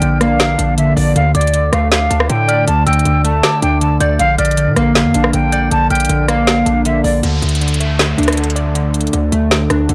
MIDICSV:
0, 0, Header, 1, 7, 480
1, 0, Start_track
1, 0, Key_signature, -1, "minor"
1, 0, Tempo, 379747
1, 1462, Time_signature, 4, 2, 24, 8
1, 12570, End_track
2, 0, Start_track
2, 0, Title_t, "Synth bell"
2, 0, Program_c, 0, 98
2, 0, Note_on_c, 0, 89, 82
2, 459, Note_off_c, 0, 89, 0
2, 1702, Note_on_c, 0, 86, 72
2, 3091, Note_off_c, 0, 86, 0
2, 3143, Note_on_c, 0, 89, 80
2, 3371, Note_off_c, 0, 89, 0
2, 3621, Note_on_c, 0, 88, 88
2, 4299, Note_off_c, 0, 88, 0
2, 4340, Note_on_c, 0, 86, 85
2, 5018, Note_off_c, 0, 86, 0
2, 5064, Note_on_c, 0, 91, 82
2, 5291, Note_off_c, 0, 91, 0
2, 5543, Note_on_c, 0, 89, 83
2, 6932, Note_off_c, 0, 89, 0
2, 6982, Note_on_c, 0, 91, 80
2, 7210, Note_off_c, 0, 91, 0
2, 7463, Note_on_c, 0, 89, 81
2, 8140, Note_off_c, 0, 89, 0
2, 12570, End_track
3, 0, Start_track
3, 0, Title_t, "Flute"
3, 0, Program_c, 1, 73
3, 0, Note_on_c, 1, 79, 81
3, 234, Note_off_c, 1, 79, 0
3, 263, Note_on_c, 1, 77, 88
3, 940, Note_off_c, 1, 77, 0
3, 983, Note_on_c, 1, 76, 80
3, 1183, Note_off_c, 1, 76, 0
3, 1223, Note_on_c, 1, 74, 84
3, 1423, Note_off_c, 1, 74, 0
3, 1463, Note_on_c, 1, 77, 105
3, 1663, Note_off_c, 1, 77, 0
3, 1704, Note_on_c, 1, 74, 86
3, 2154, Note_off_c, 1, 74, 0
3, 2183, Note_on_c, 1, 77, 75
3, 2383, Note_off_c, 1, 77, 0
3, 2421, Note_on_c, 1, 77, 90
3, 2873, Note_off_c, 1, 77, 0
3, 2901, Note_on_c, 1, 79, 84
3, 3353, Note_off_c, 1, 79, 0
3, 3380, Note_on_c, 1, 81, 113
3, 3582, Note_off_c, 1, 81, 0
3, 3620, Note_on_c, 1, 79, 80
3, 4072, Note_off_c, 1, 79, 0
3, 4101, Note_on_c, 1, 81, 80
3, 4553, Note_off_c, 1, 81, 0
3, 4580, Note_on_c, 1, 79, 89
3, 4782, Note_off_c, 1, 79, 0
3, 4821, Note_on_c, 1, 81, 85
3, 5022, Note_off_c, 1, 81, 0
3, 5301, Note_on_c, 1, 77, 127
3, 5502, Note_off_c, 1, 77, 0
3, 5542, Note_on_c, 1, 74, 96
3, 5993, Note_off_c, 1, 74, 0
3, 6023, Note_on_c, 1, 77, 80
3, 6223, Note_off_c, 1, 77, 0
3, 6263, Note_on_c, 1, 77, 85
3, 6714, Note_off_c, 1, 77, 0
3, 6743, Note_on_c, 1, 79, 82
3, 7194, Note_off_c, 1, 79, 0
3, 7220, Note_on_c, 1, 81, 115
3, 7422, Note_off_c, 1, 81, 0
3, 7462, Note_on_c, 1, 79, 81
3, 7914, Note_off_c, 1, 79, 0
3, 7943, Note_on_c, 1, 77, 88
3, 8619, Note_off_c, 1, 77, 0
3, 8663, Note_on_c, 1, 76, 78
3, 8863, Note_off_c, 1, 76, 0
3, 8902, Note_on_c, 1, 74, 84
3, 9102, Note_off_c, 1, 74, 0
3, 12570, End_track
4, 0, Start_track
4, 0, Title_t, "Synth keys"
4, 0, Program_c, 2, 88
4, 0, Control_c, 2, 64, 127
4, 0, Note_on_c, 2, 50, 87
4, 0, Note_on_c, 2, 58, 96
4, 0, Note_on_c, 2, 62, 83
4, 0, Note_on_c, 2, 74, 88
4, 27, Note_off_c, 2, 50, 0
4, 27, Note_on_c, 2, 50, 77
4, 267, Note_off_c, 2, 58, 0
4, 267, Note_on_c, 2, 58, 105
4, 487, Note_off_c, 2, 50, 0
4, 503, Note_on_c, 2, 50, 76
4, 505, Note_off_c, 2, 74, 0
4, 734, Note_off_c, 2, 62, 0
4, 734, Note_on_c, 2, 62, 76
4, 972, Note_off_c, 2, 50, 0
4, 987, Note_on_c, 2, 50, 91
4, 1219, Note_on_c, 2, 74, 83
4, 1450, Note_off_c, 2, 50, 0
4, 1458, Note_off_c, 2, 62, 0
4, 1461, Note_off_c, 2, 74, 0
4, 1465, Note_off_c, 2, 58, 0
4, 1465, Note_on_c, 2, 50, 89
4, 1479, Control_c, 2, 64, 0
4, 1685, Control_c, 2, 64, 127
4, 1923, Note_off_c, 2, 50, 0
4, 1938, Note_on_c, 2, 50, 78
4, 2182, Note_on_c, 2, 57, 89
4, 2409, Note_off_c, 2, 50, 0
4, 2424, Note_on_c, 2, 50, 67
4, 2659, Note_on_c, 2, 62, 81
4, 2885, Note_off_c, 2, 50, 0
4, 2900, Note_on_c, 2, 50, 94
4, 3135, Note_on_c, 2, 74, 84
4, 3364, Note_off_c, 2, 50, 0
4, 3379, Note_on_c, 2, 50, 87
4, 3382, Note_off_c, 2, 57, 0
4, 3848, Note_off_c, 2, 50, 0
4, 3861, Note_off_c, 2, 62, 0
4, 3863, Note_on_c, 2, 50, 73
4, 4102, Note_on_c, 2, 57, 95
4, 4324, Note_off_c, 2, 50, 0
4, 4339, Note_off_c, 2, 74, 0
4, 4340, Note_on_c, 2, 50, 77
4, 4583, Note_on_c, 2, 62, 79
4, 4808, Note_off_c, 2, 50, 0
4, 4823, Note_on_c, 2, 50, 86
4, 5067, Note_on_c, 2, 74, 83
4, 5290, Note_off_c, 2, 50, 0
4, 5302, Note_off_c, 2, 57, 0
4, 5302, Note_off_c, 2, 62, 0
4, 5305, Note_off_c, 2, 74, 0
4, 5305, Note_on_c, 2, 50, 85
4, 5320, Control_c, 2, 64, 0
4, 5521, Control_c, 2, 64, 127
4, 5770, Note_off_c, 2, 50, 0
4, 5785, Note_on_c, 2, 50, 79
4, 6025, Note_on_c, 2, 58, 97
4, 6248, Note_off_c, 2, 50, 0
4, 6263, Note_on_c, 2, 50, 75
4, 6508, Note_on_c, 2, 62, 83
4, 6730, Note_off_c, 2, 50, 0
4, 6745, Note_on_c, 2, 50, 81
4, 6987, Note_on_c, 2, 74, 90
4, 7213, Note_off_c, 2, 50, 0
4, 7224, Note_off_c, 2, 58, 0
4, 7228, Note_on_c, 2, 50, 89
4, 7692, Note_off_c, 2, 50, 0
4, 7705, Note_off_c, 2, 62, 0
4, 7708, Note_on_c, 2, 50, 73
4, 7947, Note_on_c, 2, 58, 100
4, 8168, Note_off_c, 2, 50, 0
4, 8183, Note_on_c, 2, 50, 73
4, 8185, Note_off_c, 2, 74, 0
4, 8414, Note_on_c, 2, 62, 79
4, 8652, Note_off_c, 2, 50, 0
4, 8667, Note_on_c, 2, 50, 90
4, 8898, Note_on_c, 2, 74, 79
4, 9129, Note_off_c, 2, 50, 0
4, 9138, Note_off_c, 2, 62, 0
4, 9140, Note_off_c, 2, 74, 0
4, 9144, Note_on_c, 2, 50, 87
4, 9145, Note_off_c, 2, 58, 0
4, 9158, Control_c, 2, 64, 0
4, 9367, Control_c, 2, 64, 127
4, 9601, Note_off_c, 2, 50, 0
4, 9617, Note_on_c, 2, 50, 72
4, 9863, Note_on_c, 2, 57, 92
4, 10089, Note_off_c, 2, 50, 0
4, 10104, Note_on_c, 2, 50, 67
4, 10338, Note_on_c, 2, 62, 78
4, 10564, Note_off_c, 2, 50, 0
4, 10580, Note_on_c, 2, 50, 91
4, 10815, Note_on_c, 2, 74, 83
4, 11043, Note_off_c, 2, 50, 0
4, 11058, Note_on_c, 2, 50, 84
4, 11063, Note_off_c, 2, 57, 0
4, 11527, Note_off_c, 2, 50, 0
4, 11540, Note_off_c, 2, 62, 0
4, 11542, Note_on_c, 2, 50, 71
4, 11782, Note_on_c, 2, 57, 88
4, 12005, Note_off_c, 2, 50, 0
4, 12019, Note_off_c, 2, 74, 0
4, 12020, Note_on_c, 2, 50, 76
4, 12264, Note_on_c, 2, 62, 75
4, 12488, Note_off_c, 2, 50, 0
4, 12503, Note_on_c, 2, 50, 81
4, 12570, Note_off_c, 2, 50, 0
4, 12570, Note_off_c, 2, 57, 0
4, 12570, Note_off_c, 2, 62, 0
4, 12570, End_track
5, 0, Start_track
5, 0, Title_t, "808-style bass"
5, 0, Program_c, 3, 38
5, 22, Note_on_c, 3, 34, 107
5, 714, Note_off_c, 3, 34, 0
5, 743, Note_on_c, 3, 34, 107
5, 1203, Note_off_c, 3, 34, 0
5, 1223, Note_on_c, 3, 34, 108
5, 1453, Note_off_c, 3, 34, 0
5, 1462, Note_on_c, 3, 38, 112
5, 1693, Note_off_c, 3, 38, 0
5, 1702, Note_on_c, 3, 38, 105
5, 2163, Note_off_c, 3, 38, 0
5, 2182, Note_on_c, 3, 38, 111
5, 2643, Note_off_c, 3, 38, 0
5, 2662, Note_on_c, 3, 38, 106
5, 2893, Note_off_c, 3, 38, 0
5, 2902, Note_on_c, 3, 45, 110
5, 3363, Note_off_c, 3, 45, 0
5, 3382, Note_on_c, 3, 38, 109
5, 3613, Note_off_c, 3, 38, 0
5, 3622, Note_on_c, 3, 38, 102
5, 3852, Note_off_c, 3, 38, 0
5, 3862, Note_on_c, 3, 38, 110
5, 4323, Note_off_c, 3, 38, 0
5, 4583, Note_on_c, 3, 38, 105
5, 5043, Note_off_c, 3, 38, 0
5, 5062, Note_on_c, 3, 38, 109
5, 5293, Note_off_c, 3, 38, 0
5, 5302, Note_on_c, 3, 34, 114
5, 5533, Note_off_c, 3, 34, 0
5, 5543, Note_on_c, 3, 34, 106
5, 5902, Note_on_c, 3, 46, 99
5, 5921, Note_off_c, 3, 34, 0
5, 6017, Note_off_c, 3, 46, 0
5, 6022, Note_on_c, 3, 34, 110
5, 6383, Note_on_c, 3, 41, 101
5, 6402, Note_off_c, 3, 34, 0
5, 6496, Note_off_c, 3, 41, 0
5, 6503, Note_on_c, 3, 34, 106
5, 6733, Note_off_c, 3, 34, 0
5, 6743, Note_on_c, 3, 34, 107
5, 7204, Note_off_c, 3, 34, 0
5, 7223, Note_on_c, 3, 34, 113
5, 7453, Note_off_c, 3, 34, 0
5, 7463, Note_on_c, 3, 34, 100
5, 7693, Note_off_c, 3, 34, 0
5, 7702, Note_on_c, 3, 34, 110
5, 8394, Note_off_c, 3, 34, 0
5, 8423, Note_on_c, 3, 34, 108
5, 8883, Note_off_c, 3, 34, 0
5, 8903, Note_on_c, 3, 34, 105
5, 9133, Note_off_c, 3, 34, 0
5, 9142, Note_on_c, 3, 38, 111
5, 9373, Note_off_c, 3, 38, 0
5, 9383, Note_on_c, 3, 38, 101
5, 10304, Note_off_c, 3, 38, 0
5, 10343, Note_on_c, 3, 38, 107
5, 11495, Note_off_c, 3, 38, 0
5, 11543, Note_on_c, 3, 38, 107
5, 11773, Note_off_c, 3, 38, 0
5, 11783, Note_on_c, 3, 38, 104
5, 12243, Note_off_c, 3, 38, 0
5, 12263, Note_on_c, 3, 38, 105
5, 12493, Note_off_c, 3, 38, 0
5, 12503, Note_on_c, 3, 38, 110
5, 12570, Note_off_c, 3, 38, 0
5, 12570, End_track
6, 0, Start_track
6, 0, Title_t, "Downlifter"
6, 0, Program_c, 4, 103
6, 9143, Note_on_c, 4, 60, 85
6, 12570, Note_off_c, 4, 60, 0
6, 12570, End_track
7, 0, Start_track
7, 0, Title_t, "Drums"
7, 22, Note_on_c, 9, 42, 77
7, 148, Note_off_c, 9, 42, 0
7, 262, Note_on_c, 9, 37, 65
7, 263, Note_on_c, 9, 42, 81
7, 389, Note_off_c, 9, 37, 0
7, 390, Note_off_c, 9, 42, 0
7, 502, Note_on_c, 9, 38, 110
7, 502, Note_on_c, 9, 42, 78
7, 628, Note_off_c, 9, 42, 0
7, 629, Note_off_c, 9, 38, 0
7, 743, Note_on_c, 9, 42, 88
7, 870, Note_off_c, 9, 42, 0
7, 983, Note_on_c, 9, 42, 82
7, 1109, Note_off_c, 9, 42, 0
7, 1224, Note_on_c, 9, 46, 55
7, 1350, Note_off_c, 9, 46, 0
7, 1463, Note_on_c, 9, 42, 78
7, 1590, Note_off_c, 9, 42, 0
7, 1702, Note_on_c, 9, 42, 72
7, 1782, Note_off_c, 9, 42, 0
7, 1782, Note_on_c, 9, 42, 56
7, 1861, Note_off_c, 9, 42, 0
7, 1861, Note_on_c, 9, 42, 41
7, 1941, Note_off_c, 9, 42, 0
7, 1941, Note_on_c, 9, 42, 81
7, 2067, Note_off_c, 9, 42, 0
7, 2182, Note_on_c, 9, 37, 67
7, 2184, Note_on_c, 9, 42, 78
7, 2309, Note_off_c, 9, 37, 0
7, 2310, Note_off_c, 9, 42, 0
7, 2422, Note_on_c, 9, 38, 109
7, 2422, Note_on_c, 9, 42, 75
7, 2548, Note_off_c, 9, 42, 0
7, 2549, Note_off_c, 9, 38, 0
7, 2663, Note_on_c, 9, 42, 90
7, 2783, Note_on_c, 9, 37, 100
7, 2789, Note_off_c, 9, 42, 0
7, 2902, Note_on_c, 9, 42, 80
7, 2910, Note_off_c, 9, 37, 0
7, 3028, Note_off_c, 9, 42, 0
7, 3143, Note_on_c, 9, 42, 74
7, 3269, Note_off_c, 9, 42, 0
7, 3382, Note_on_c, 9, 42, 82
7, 3509, Note_off_c, 9, 42, 0
7, 3623, Note_on_c, 9, 42, 72
7, 3703, Note_off_c, 9, 42, 0
7, 3703, Note_on_c, 9, 42, 57
7, 3783, Note_off_c, 9, 42, 0
7, 3783, Note_on_c, 9, 42, 42
7, 3861, Note_off_c, 9, 42, 0
7, 3861, Note_on_c, 9, 42, 76
7, 3987, Note_off_c, 9, 42, 0
7, 4103, Note_on_c, 9, 42, 78
7, 4230, Note_off_c, 9, 42, 0
7, 4341, Note_on_c, 9, 42, 76
7, 4342, Note_on_c, 9, 38, 108
7, 4468, Note_off_c, 9, 38, 0
7, 4468, Note_off_c, 9, 42, 0
7, 4582, Note_on_c, 9, 42, 86
7, 4709, Note_off_c, 9, 42, 0
7, 4822, Note_on_c, 9, 42, 79
7, 4948, Note_off_c, 9, 42, 0
7, 5063, Note_on_c, 9, 42, 73
7, 5189, Note_off_c, 9, 42, 0
7, 5302, Note_on_c, 9, 42, 80
7, 5428, Note_off_c, 9, 42, 0
7, 5542, Note_on_c, 9, 42, 73
7, 5623, Note_off_c, 9, 42, 0
7, 5623, Note_on_c, 9, 42, 57
7, 5703, Note_off_c, 9, 42, 0
7, 5703, Note_on_c, 9, 42, 41
7, 5782, Note_off_c, 9, 42, 0
7, 5782, Note_on_c, 9, 42, 79
7, 5908, Note_off_c, 9, 42, 0
7, 6022, Note_on_c, 9, 37, 68
7, 6023, Note_on_c, 9, 42, 79
7, 6148, Note_off_c, 9, 37, 0
7, 6150, Note_off_c, 9, 42, 0
7, 6261, Note_on_c, 9, 42, 76
7, 6262, Note_on_c, 9, 38, 110
7, 6388, Note_off_c, 9, 38, 0
7, 6388, Note_off_c, 9, 42, 0
7, 6502, Note_on_c, 9, 42, 89
7, 6623, Note_on_c, 9, 37, 97
7, 6628, Note_off_c, 9, 42, 0
7, 6742, Note_on_c, 9, 42, 80
7, 6749, Note_off_c, 9, 37, 0
7, 6868, Note_off_c, 9, 42, 0
7, 6982, Note_on_c, 9, 42, 75
7, 7109, Note_off_c, 9, 42, 0
7, 7222, Note_on_c, 9, 42, 78
7, 7348, Note_off_c, 9, 42, 0
7, 7462, Note_on_c, 9, 42, 43
7, 7523, Note_off_c, 9, 42, 0
7, 7523, Note_on_c, 9, 42, 52
7, 7583, Note_off_c, 9, 42, 0
7, 7583, Note_on_c, 9, 42, 60
7, 7643, Note_off_c, 9, 42, 0
7, 7643, Note_on_c, 9, 42, 74
7, 7702, Note_off_c, 9, 42, 0
7, 7702, Note_on_c, 9, 42, 79
7, 7829, Note_off_c, 9, 42, 0
7, 7943, Note_on_c, 9, 37, 66
7, 7944, Note_on_c, 9, 42, 79
7, 8069, Note_off_c, 9, 37, 0
7, 8070, Note_off_c, 9, 42, 0
7, 8181, Note_on_c, 9, 42, 76
7, 8182, Note_on_c, 9, 38, 107
7, 8308, Note_off_c, 9, 38, 0
7, 8308, Note_off_c, 9, 42, 0
7, 8423, Note_on_c, 9, 42, 88
7, 8549, Note_off_c, 9, 42, 0
7, 8663, Note_on_c, 9, 42, 80
7, 8789, Note_off_c, 9, 42, 0
7, 8903, Note_on_c, 9, 46, 56
7, 9030, Note_off_c, 9, 46, 0
7, 9143, Note_on_c, 9, 42, 77
7, 9269, Note_off_c, 9, 42, 0
7, 9383, Note_on_c, 9, 42, 42
7, 9383, Note_on_c, 9, 46, 72
7, 9463, Note_off_c, 9, 42, 0
7, 9463, Note_on_c, 9, 42, 48
7, 9509, Note_off_c, 9, 46, 0
7, 9543, Note_off_c, 9, 42, 0
7, 9543, Note_on_c, 9, 42, 54
7, 9624, Note_off_c, 9, 42, 0
7, 9624, Note_on_c, 9, 42, 61
7, 9705, Note_off_c, 9, 42, 0
7, 9705, Note_on_c, 9, 42, 68
7, 9784, Note_off_c, 9, 42, 0
7, 9784, Note_on_c, 9, 42, 70
7, 9865, Note_off_c, 9, 42, 0
7, 9865, Note_on_c, 9, 42, 80
7, 9991, Note_off_c, 9, 42, 0
7, 10103, Note_on_c, 9, 38, 108
7, 10103, Note_on_c, 9, 42, 69
7, 10229, Note_off_c, 9, 42, 0
7, 10230, Note_off_c, 9, 38, 0
7, 10344, Note_on_c, 9, 42, 49
7, 10403, Note_off_c, 9, 42, 0
7, 10403, Note_on_c, 9, 42, 59
7, 10463, Note_off_c, 9, 42, 0
7, 10463, Note_on_c, 9, 42, 75
7, 10465, Note_on_c, 9, 37, 96
7, 10523, Note_off_c, 9, 42, 0
7, 10523, Note_on_c, 9, 42, 88
7, 10584, Note_off_c, 9, 42, 0
7, 10584, Note_on_c, 9, 42, 74
7, 10591, Note_off_c, 9, 37, 0
7, 10663, Note_off_c, 9, 42, 0
7, 10663, Note_on_c, 9, 42, 59
7, 10743, Note_off_c, 9, 42, 0
7, 10743, Note_on_c, 9, 42, 42
7, 10823, Note_off_c, 9, 42, 0
7, 10823, Note_on_c, 9, 42, 71
7, 10949, Note_off_c, 9, 42, 0
7, 11063, Note_on_c, 9, 42, 79
7, 11189, Note_off_c, 9, 42, 0
7, 11302, Note_on_c, 9, 42, 69
7, 11302, Note_on_c, 9, 46, 73
7, 11383, Note_off_c, 9, 42, 0
7, 11383, Note_on_c, 9, 42, 56
7, 11428, Note_off_c, 9, 46, 0
7, 11462, Note_off_c, 9, 42, 0
7, 11462, Note_on_c, 9, 42, 40
7, 11542, Note_off_c, 9, 42, 0
7, 11542, Note_on_c, 9, 42, 78
7, 11668, Note_off_c, 9, 42, 0
7, 11784, Note_on_c, 9, 42, 76
7, 11910, Note_off_c, 9, 42, 0
7, 12022, Note_on_c, 9, 42, 68
7, 12023, Note_on_c, 9, 38, 107
7, 12149, Note_off_c, 9, 38, 0
7, 12149, Note_off_c, 9, 42, 0
7, 12261, Note_on_c, 9, 37, 70
7, 12263, Note_on_c, 9, 42, 78
7, 12388, Note_off_c, 9, 37, 0
7, 12389, Note_off_c, 9, 42, 0
7, 12503, Note_on_c, 9, 42, 60
7, 12570, Note_off_c, 9, 42, 0
7, 12570, End_track
0, 0, End_of_file